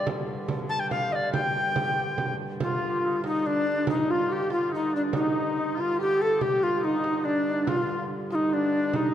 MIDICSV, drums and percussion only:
0, 0, Header, 1, 2, 480
1, 0, Start_track
1, 0, Tempo, 422535
1, 72, Time_signature, 3, 2, 24, 8
1, 10385, End_track
2, 0, Start_track
2, 0, Title_t, "Frame drum"
2, 75, Note_on_c, 9, 64, 91
2, 189, Note_off_c, 9, 64, 0
2, 318, Note_on_c, 9, 64, 30
2, 432, Note_off_c, 9, 64, 0
2, 550, Note_on_c, 9, 64, 93
2, 664, Note_off_c, 9, 64, 0
2, 1035, Note_on_c, 9, 64, 80
2, 1149, Note_off_c, 9, 64, 0
2, 1276, Note_on_c, 9, 64, 28
2, 1389, Note_off_c, 9, 64, 0
2, 1517, Note_on_c, 9, 64, 92
2, 1631, Note_off_c, 9, 64, 0
2, 1997, Note_on_c, 9, 64, 92
2, 2110, Note_off_c, 9, 64, 0
2, 2474, Note_on_c, 9, 64, 76
2, 2587, Note_off_c, 9, 64, 0
2, 2720, Note_on_c, 9, 64, 25
2, 2834, Note_off_c, 9, 64, 0
2, 2958, Note_on_c, 9, 64, 90
2, 3072, Note_off_c, 9, 64, 0
2, 3442, Note_on_c, 9, 64, 30
2, 3556, Note_off_c, 9, 64, 0
2, 3677, Note_on_c, 9, 64, 73
2, 3791, Note_off_c, 9, 64, 0
2, 3920, Note_on_c, 9, 64, 26
2, 4034, Note_off_c, 9, 64, 0
2, 4396, Note_on_c, 9, 64, 103
2, 4510, Note_off_c, 9, 64, 0
2, 4872, Note_on_c, 9, 64, 28
2, 4986, Note_off_c, 9, 64, 0
2, 5115, Note_on_c, 9, 64, 68
2, 5228, Note_off_c, 9, 64, 0
2, 5351, Note_on_c, 9, 64, 24
2, 5465, Note_off_c, 9, 64, 0
2, 5828, Note_on_c, 9, 64, 88
2, 5942, Note_off_c, 9, 64, 0
2, 6324, Note_on_c, 9, 64, 25
2, 6438, Note_off_c, 9, 64, 0
2, 6561, Note_on_c, 9, 64, 57
2, 6674, Note_off_c, 9, 64, 0
2, 6812, Note_on_c, 9, 64, 20
2, 6926, Note_off_c, 9, 64, 0
2, 7284, Note_on_c, 9, 64, 79
2, 7397, Note_off_c, 9, 64, 0
2, 7765, Note_on_c, 9, 64, 23
2, 7879, Note_off_c, 9, 64, 0
2, 7996, Note_on_c, 9, 64, 67
2, 8110, Note_off_c, 9, 64, 0
2, 8246, Note_on_c, 9, 64, 21
2, 8359, Note_off_c, 9, 64, 0
2, 8716, Note_on_c, 9, 64, 90
2, 8829, Note_off_c, 9, 64, 0
2, 9194, Note_on_c, 9, 64, 27
2, 9308, Note_off_c, 9, 64, 0
2, 9435, Note_on_c, 9, 64, 61
2, 9548, Note_off_c, 9, 64, 0
2, 9671, Note_on_c, 9, 64, 24
2, 9784, Note_off_c, 9, 64, 0
2, 10148, Note_on_c, 9, 64, 82
2, 10262, Note_off_c, 9, 64, 0
2, 10385, End_track
0, 0, End_of_file